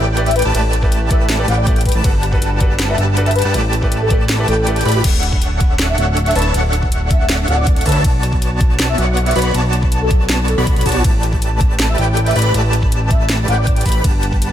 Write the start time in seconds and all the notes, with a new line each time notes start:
0.00 A1 A3 G4 B4 D5 G5
0.16 A3 E4 G4 B4 D5, closed hi-hat
0.26 E5, closed hi-hat
0.31 closed hi-hat
0.36 B4, closed hi-hat
0.39 closed hi-hat
0.42 A1 A3 G4 B4 D5 A5, closed hi-hat
0.54 A1 A3 E4 G4 B4 D5 A5, closed hi-hat, ride
0.73 closed hi-hat
0.82 A3 E4 G4 B4 D5, kick
0.92 closed hi-hat
1.09 A3 E4 G4 B4 D5 E5, kick, closed hi-hat
1.20 E5
1.29 snare, closed hi-hat, ride
1.38 A3 E4 G4 B4 D5
1.48 A1 A3 G4 B4 D5 F#5 G5, closed hi-hat
1.58 D5
1.66 A3 E4 G4 B4 D5, kick, closed hi-hat
1.76 closed hi-hat
1.81 closed hi-hat
1.86 B4, kick, closed hi-hat
1.89 closed hi-hat
1.92 A1 A3 G4 B4 D5 A5, closed hi-hat
2.03 G1 G3 D4 F#4 G4 A4 B4 F#5 A5, kick, closed hi-hat, ride
2.23 closed hi-hat
2.31 G3 D4 F#4 A4 B4, kick
2.42 closed hi-hat
2.60 G3 D4 F#4 A4 B4, kick, closed hi-hat
2.79 snare, closed hi-hat, ride
2.88 G3 D4 F#4 A4 B4 E5
2.98 G1 G3 G4 B4 F#5 A5, closed hi-hat
3.16 G3 D4 F#4 A4 B4, closed hi-hat
3.26 E5, closed hi-hat
3.31 closed hi-hat
3.35 B4, closed hi-hat
3.39 closed hi-hat
3.42 G2 G3 G4 B4 F#5 A5, closed hi-hat
3.54 A1 A3 E4 G4 B4 D5 A5, closed hi-hat, ride
3.73 closed hi-hat
3.82 A3 E4 G4 B4 D5, kick
3.92 closed hi-hat
4.01 A4
4.10 A3 E4 G4 A4 B4 D5, kick, closed hi-hat
4.20 A4
4.29 snare, closed hi-hat, ride
4.38 A3 E4 G4 B4 D5
4.48 A1 A3 G4 A4 B4 D5 G5, closed hi-hat
4.66 A3 E4 G4 B4 D5, closed hi-hat
4.76 closed hi-hat
4.81 closed hi-hat
4.85 A1 A3 G4 B4 D5 B5, closed hi-hat
4.89 closed hi-hat
4.92 closed hi-hat
5.04 D1 D4 A4 C#5 E5 F#5, kick, closed hi-hat, crash, ride
5.23 closed hi-hat
5.33 kick
5.42 closed hi-hat
5.61 kick, closed hi-hat
5.79 snare, closed hi-hat
5.89 E5
5.98 D1 D4 A4 C#5 E5 F#5, closed hi-hat
6.17 closed hi-hat
6.26 E5, closed hi-hat
6.31 closed hi-hat
6.35 D1 D4 A4 B4 C#5 E5 A5, closed hi-hat, open hi-hat
6.42 B4, closed hi-hat
6.54 D1 D4 A4 C#5 E5 F#5, closed hi-hat, ride
6.73 closed hi-hat
6.83 kick
6.92 closed hi-hat
7.11 E5, kick, closed hi-hat
7.20 E5
7.29 snare, closed hi-hat
7.48 D1 D4 A4 C#5 E5 F#5, closed hi-hat
7.57 D5
7.67 D5, kick, closed hi-hat
7.76 closed hi-hat
7.81 closed hi-hat
7.86 D2 D4 A4 B4 C#5 E5 A5, kick, closed hi-hat, open hi-hat
7.92 B4, closed hi-hat
8.04 B1 B3 F#4 C#5 D5 A5, kick, closed hi-hat, ride
8.23 closed hi-hat
8.33 kick
8.42 closed hi-hat
8.61 kick, closed hi-hat
8.79 snare, closed hi-hat
8.89 E5
8.98 B1 B3 F#4 C#5 D5 F#5, closed hi-hat
9.17 closed hi-hat
9.26 E5, closed hi-hat
9.31 closed hi-hat
9.35 B1 B3 F#4 B4 C#5 D5 B5, closed hi-hat, open hi-hat
9.42 B4, closed hi-hat
9.54 B1 B3 F#4 C#5 D5 A5, closed hi-hat, ride
9.73 closed hi-hat
9.83 kick
9.92 closed hi-hat
10.01 A4
10.11 A4, kick, closed hi-hat
10.20 A4
10.29 snare, closed hi-hat
10.48 A4, closed hi-hat
10.58 B1 B3 F#4 C#5 D5 B5
10.67 kick, closed hi-hat
10.76 B1 B3 F#4 C#5 D5 B5, closed hi-hat
10.81 closed hi-hat
10.86 B1 B3 F#4 C#5 D5 A5, kick, closed hi-hat, open hi-hat
10.92 closed hi-hat
11.04 A1 A3 G4 B4 D5 A5, kick, closed hi-hat, ride
11.23 closed hi-hat
11.33 kick
11.42 closed hi-hat
11.61 kick, closed hi-hat
11.79 snare, closed hi-hat
11.89 E5
11.98 A1 A3 G4 B4 D5 G5, closed hi-hat
12.17 closed hi-hat
12.26 E5, closed hi-hat
12.31 closed hi-hat
12.35 A1 A3 G4 B4 D5 B5, closed hi-hat, open hi-hat
12.42 B4, closed hi-hat
12.54 A1 A3 G4 B4 D5 A5, closed hi-hat, ride
12.73 closed hi-hat
12.83 kick
12.92 closed hi-hat
13.11 E5, kick, closed hi-hat
13.20 E5
13.29 snare, closed hi-hat
13.48 A1 A3 G4 B4 D5 F#5 G5, closed hi-hat
13.58 D5
13.67 D5, kick, closed hi-hat
13.76 closed hi-hat
13.81 closed hi-hat
13.85 A1 A3 G4 B4 D5 B5, kick, closed hi-hat, open hi-hat
13.92 B4, closed hi-hat
14.04 G1 G3 G4 B4 F#5 A5, kick, closed hi-hat, ride
14.23 closed hi-hat
14.33 kick
14.42 closed hi-hat